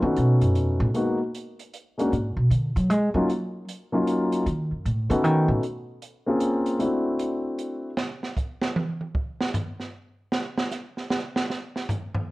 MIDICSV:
0, 0, Header, 1, 4, 480
1, 0, Start_track
1, 0, Tempo, 390879
1, 1160, Time_signature, 3, 2, 24, 8
1, 15123, End_track
2, 0, Start_track
2, 0, Title_t, "Grand piano"
2, 0, Program_c, 0, 0
2, 15, Note_on_c, 0, 57, 55
2, 23, Note_on_c, 0, 59, 50
2, 28, Note_on_c, 0, 61, 50
2, 31, Note_on_c, 0, 63, 47
2, 39, Note_on_c, 0, 66, 60
2, 1051, Note_off_c, 0, 57, 0
2, 1054, Note_off_c, 0, 59, 0
2, 1057, Note_off_c, 0, 61, 0
2, 1058, Note_off_c, 0, 63, 0
2, 1062, Note_off_c, 0, 66, 0
2, 1155, Note_on_c, 0, 56, 50
2, 1157, Note_on_c, 0, 58, 48
2, 1164, Note_on_c, 0, 59, 42
2, 1171, Note_on_c, 0, 63, 48
2, 1179, Note_on_c, 0, 66, 57
2, 1438, Note_off_c, 0, 56, 0
2, 1439, Note_off_c, 0, 58, 0
2, 1442, Note_off_c, 0, 59, 0
2, 1446, Note_off_c, 0, 63, 0
2, 1450, Note_off_c, 0, 66, 0
2, 2426, Note_on_c, 0, 56, 55
2, 2436, Note_on_c, 0, 58, 54
2, 2443, Note_on_c, 0, 61, 53
2, 2450, Note_on_c, 0, 62, 47
2, 2456, Note_on_c, 0, 66, 61
2, 2580, Note_off_c, 0, 56, 0
2, 2585, Note_off_c, 0, 58, 0
2, 2588, Note_off_c, 0, 61, 0
2, 2592, Note_off_c, 0, 62, 0
2, 2595, Note_off_c, 0, 66, 0
2, 3862, Note_on_c, 0, 54, 66
2, 3866, Note_on_c, 0, 58, 55
2, 3872, Note_on_c, 0, 61, 56
2, 3872, Note_on_c, 0, 63, 61
2, 3887, Note_on_c, 0, 65, 65
2, 4017, Note_off_c, 0, 54, 0
2, 4019, Note_off_c, 0, 58, 0
2, 4022, Note_off_c, 0, 61, 0
2, 4023, Note_off_c, 0, 63, 0
2, 4030, Note_off_c, 0, 65, 0
2, 4817, Note_on_c, 0, 54, 58
2, 4817, Note_on_c, 0, 58, 57
2, 4828, Note_on_c, 0, 61, 55
2, 4834, Note_on_c, 0, 63, 53
2, 4839, Note_on_c, 0, 65, 63
2, 5438, Note_off_c, 0, 54, 0
2, 5438, Note_off_c, 0, 58, 0
2, 5443, Note_off_c, 0, 61, 0
2, 5446, Note_off_c, 0, 63, 0
2, 5449, Note_off_c, 0, 65, 0
2, 6255, Note_on_c, 0, 57, 60
2, 6261, Note_on_c, 0, 59, 58
2, 6266, Note_on_c, 0, 61, 52
2, 6274, Note_on_c, 0, 63, 54
2, 6275, Note_on_c, 0, 66, 62
2, 6876, Note_off_c, 0, 57, 0
2, 6879, Note_off_c, 0, 59, 0
2, 6881, Note_off_c, 0, 61, 0
2, 6885, Note_off_c, 0, 63, 0
2, 6886, Note_off_c, 0, 66, 0
2, 7691, Note_on_c, 0, 58, 59
2, 7699, Note_on_c, 0, 60, 58
2, 7708, Note_on_c, 0, 61, 50
2, 7709, Note_on_c, 0, 65, 56
2, 7714, Note_on_c, 0, 68, 62
2, 8313, Note_off_c, 0, 58, 0
2, 8317, Note_off_c, 0, 60, 0
2, 8322, Note_off_c, 0, 61, 0
2, 8322, Note_off_c, 0, 65, 0
2, 8325, Note_off_c, 0, 68, 0
2, 8338, Note_on_c, 0, 57, 51
2, 8345, Note_on_c, 0, 60, 52
2, 8349, Note_on_c, 0, 62, 48
2, 8356, Note_on_c, 0, 64, 49
2, 8359, Note_on_c, 0, 66, 52
2, 9685, Note_off_c, 0, 57, 0
2, 9689, Note_off_c, 0, 60, 0
2, 9691, Note_off_c, 0, 62, 0
2, 9694, Note_off_c, 0, 64, 0
2, 9696, Note_off_c, 0, 66, 0
2, 15123, End_track
3, 0, Start_track
3, 0, Title_t, "Upright bass"
3, 0, Program_c, 1, 32
3, 29, Note_on_c, 1, 51, 86
3, 194, Note_off_c, 1, 51, 0
3, 209, Note_on_c, 1, 47, 77
3, 503, Note_off_c, 1, 47, 0
3, 511, Note_on_c, 1, 42, 72
3, 680, Note_off_c, 1, 42, 0
3, 680, Note_on_c, 1, 41, 75
3, 976, Note_off_c, 1, 41, 0
3, 983, Note_on_c, 1, 45, 97
3, 1087, Note_off_c, 1, 45, 0
3, 2605, Note_on_c, 1, 44, 67
3, 2898, Note_off_c, 1, 44, 0
3, 2905, Note_on_c, 1, 47, 78
3, 3067, Note_off_c, 1, 47, 0
3, 3074, Note_on_c, 1, 50, 76
3, 3379, Note_off_c, 1, 50, 0
3, 3387, Note_on_c, 1, 54, 88
3, 3557, Note_off_c, 1, 54, 0
3, 3557, Note_on_c, 1, 56, 93
3, 3849, Note_off_c, 1, 56, 0
3, 3856, Note_on_c, 1, 54, 83
3, 4465, Note_off_c, 1, 54, 0
3, 5478, Note_on_c, 1, 51, 82
3, 5776, Note_off_c, 1, 51, 0
3, 5783, Note_on_c, 1, 42, 43
3, 5949, Note_off_c, 1, 42, 0
3, 5959, Note_on_c, 1, 45, 79
3, 6251, Note_off_c, 1, 45, 0
3, 6258, Note_on_c, 1, 49, 96
3, 6431, Note_off_c, 1, 49, 0
3, 6431, Note_on_c, 1, 51, 93
3, 6725, Note_off_c, 1, 51, 0
3, 6732, Note_on_c, 1, 45, 87
3, 6838, Note_off_c, 1, 45, 0
3, 15123, End_track
4, 0, Start_track
4, 0, Title_t, "Drums"
4, 202, Note_on_c, 9, 42, 43
4, 325, Note_off_c, 9, 42, 0
4, 509, Note_on_c, 9, 42, 41
4, 632, Note_off_c, 9, 42, 0
4, 680, Note_on_c, 9, 42, 41
4, 802, Note_off_c, 9, 42, 0
4, 1160, Note_on_c, 9, 42, 41
4, 1283, Note_off_c, 9, 42, 0
4, 1651, Note_on_c, 9, 42, 42
4, 1774, Note_off_c, 9, 42, 0
4, 1956, Note_on_c, 9, 42, 42
4, 2079, Note_off_c, 9, 42, 0
4, 2130, Note_on_c, 9, 42, 47
4, 2253, Note_off_c, 9, 42, 0
4, 2446, Note_on_c, 9, 42, 47
4, 2569, Note_off_c, 9, 42, 0
4, 2614, Note_on_c, 9, 42, 39
4, 2737, Note_off_c, 9, 42, 0
4, 3085, Note_on_c, 9, 42, 45
4, 3207, Note_off_c, 9, 42, 0
4, 3396, Note_on_c, 9, 42, 42
4, 3519, Note_off_c, 9, 42, 0
4, 3565, Note_on_c, 9, 42, 50
4, 3687, Note_off_c, 9, 42, 0
4, 4045, Note_on_c, 9, 42, 39
4, 4168, Note_off_c, 9, 42, 0
4, 4526, Note_on_c, 9, 42, 49
4, 4648, Note_off_c, 9, 42, 0
4, 5001, Note_on_c, 9, 42, 54
4, 5123, Note_off_c, 9, 42, 0
4, 5309, Note_on_c, 9, 42, 49
4, 5432, Note_off_c, 9, 42, 0
4, 5482, Note_on_c, 9, 42, 44
4, 5605, Note_off_c, 9, 42, 0
4, 5963, Note_on_c, 9, 42, 41
4, 6086, Note_off_c, 9, 42, 0
4, 6269, Note_on_c, 9, 42, 48
4, 6391, Note_off_c, 9, 42, 0
4, 6437, Note_on_c, 9, 42, 42
4, 6560, Note_off_c, 9, 42, 0
4, 6916, Note_on_c, 9, 42, 40
4, 7039, Note_off_c, 9, 42, 0
4, 7392, Note_on_c, 9, 42, 44
4, 7515, Note_off_c, 9, 42, 0
4, 7864, Note_on_c, 9, 42, 54
4, 7986, Note_off_c, 9, 42, 0
4, 8178, Note_on_c, 9, 42, 45
4, 8301, Note_off_c, 9, 42, 0
4, 8349, Note_on_c, 9, 42, 45
4, 8472, Note_off_c, 9, 42, 0
4, 8833, Note_on_c, 9, 42, 51
4, 8956, Note_off_c, 9, 42, 0
4, 9316, Note_on_c, 9, 42, 46
4, 9438, Note_off_c, 9, 42, 0
4, 9789, Note_on_c, 9, 38, 93
4, 9912, Note_off_c, 9, 38, 0
4, 10106, Note_on_c, 9, 38, 51
4, 10229, Note_off_c, 9, 38, 0
4, 10273, Note_on_c, 9, 44, 50
4, 10274, Note_on_c, 9, 36, 66
4, 10396, Note_off_c, 9, 44, 0
4, 10397, Note_off_c, 9, 36, 0
4, 10579, Note_on_c, 9, 38, 91
4, 10702, Note_off_c, 9, 38, 0
4, 10757, Note_on_c, 9, 48, 97
4, 10880, Note_off_c, 9, 48, 0
4, 11062, Note_on_c, 9, 48, 34
4, 11185, Note_off_c, 9, 48, 0
4, 11234, Note_on_c, 9, 36, 82
4, 11357, Note_off_c, 9, 36, 0
4, 11551, Note_on_c, 9, 38, 91
4, 11673, Note_off_c, 9, 38, 0
4, 11716, Note_on_c, 9, 44, 53
4, 11717, Note_on_c, 9, 43, 91
4, 11839, Note_off_c, 9, 44, 0
4, 11840, Note_off_c, 9, 43, 0
4, 12030, Note_on_c, 9, 38, 38
4, 12152, Note_off_c, 9, 38, 0
4, 12673, Note_on_c, 9, 38, 98
4, 12796, Note_off_c, 9, 38, 0
4, 12987, Note_on_c, 9, 38, 96
4, 13110, Note_off_c, 9, 38, 0
4, 13152, Note_on_c, 9, 44, 55
4, 13153, Note_on_c, 9, 38, 37
4, 13275, Note_off_c, 9, 44, 0
4, 13276, Note_off_c, 9, 38, 0
4, 13471, Note_on_c, 9, 38, 45
4, 13593, Note_off_c, 9, 38, 0
4, 13634, Note_on_c, 9, 38, 102
4, 13757, Note_off_c, 9, 38, 0
4, 13949, Note_on_c, 9, 38, 100
4, 14071, Note_off_c, 9, 38, 0
4, 14121, Note_on_c, 9, 38, 57
4, 14244, Note_off_c, 9, 38, 0
4, 14438, Note_on_c, 9, 38, 55
4, 14561, Note_off_c, 9, 38, 0
4, 14599, Note_on_c, 9, 44, 51
4, 14601, Note_on_c, 9, 43, 91
4, 14722, Note_off_c, 9, 44, 0
4, 14723, Note_off_c, 9, 43, 0
4, 14914, Note_on_c, 9, 43, 88
4, 15037, Note_off_c, 9, 43, 0
4, 15123, End_track
0, 0, End_of_file